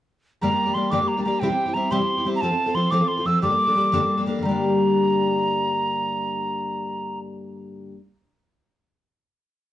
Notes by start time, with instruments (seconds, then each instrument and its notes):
0.41 twelve-string acoustic guitar G2 D3 G3 A#3 D4 G4, tin whistle A#5
0.50 twelve-string acoustic guitar G3 D4 G4
0.65 twelve-string acoustic guitar G3 A#3 D4 G4
0.74 twelve-string acoustic guitar G3 A#3 D4 G4, tin whistle C6
0.91 twelve-string acoustic guitar G2 D3 G3 A#3 D4 G4, tin whistle D6
1.01 twelve-string acoustic guitar G3 A#3 D4 G4
1.08 tin whistle A#5
1.17 twelve-string acoustic guitar G3 A#3 D4 G4
1.23 twelve-string acoustic guitar G3 A#3 D4, tin whistle A#5
1.28 twelve-string acoustic guitar G4
1.40 twelve-string acoustic guitar C3 G3 C4 E4 G4, tin whistle G5
1.49 twelve-string acoustic guitar C4 E4 G4
1.66 twelve-string acoustic guitar C4 E4 G4
1.74 twelve-string acoustic guitar G3 C4 E4 G4, tin whistle A#5
1.91 twelve-string acoustic guitar C3 G3 C4 E4 G4, tin whistle C6
1.99 twelve-string acoustic guitar C4 E4 G4
2.17 twelve-string acoustic guitar C4 E4 G4
2.25 twelve-string acoustic guitar G3 C4 E4 G4
2.36 tin whistle A#5
2.41 twelve-string acoustic guitar F3 C4 F4 A4, tin whistle A5
2.50 twelve-string acoustic guitar C4 F4 A4
2.66 twelve-string acoustic guitar C4 F4 A4
2.74 twelve-string acoustic guitar F3 C4 F4 A4, tin whistle C6
2.91 twelve-string acoustic guitar F3 C4 F4 A4, tin whistle D6
3.00 twelve-string acoustic guitar C4 F4 A4
3.08 tin whistle C6
3.17 twelve-string acoustic guitar C4 F4 A4
3.25 twelve-string acoustic guitar F3 C4 F4 A4, tin whistle E6
3.42 twelve-string acoustic guitar G2 D3 G3 A#3 D4 A4, tin whistle D6
3.50 twelve-string acoustic guitar G3 A#3 D4 A4
3.67 twelve-string acoustic guitar G3 A#3 D4 A4
3.75 twelve-string acoustic guitar G3 A#3 D4 A4
3.92 twelve-string acoustic guitar G2 D3 G3 A#3 D4 A4
4.00 twelve-string acoustic guitar G3 A#3 D4 A4
4.18 twelve-string acoustic guitar G3 A#3 D4 A4
4.26 twelve-string acoustic guitar G3 A#3 D4 A4
4.39 twelve-string acoustic guitar G2 D3, tin whistle A#5
4.45 twelve-string acoustic guitar G3 A#3
4.51 twelve-string acoustic guitar D4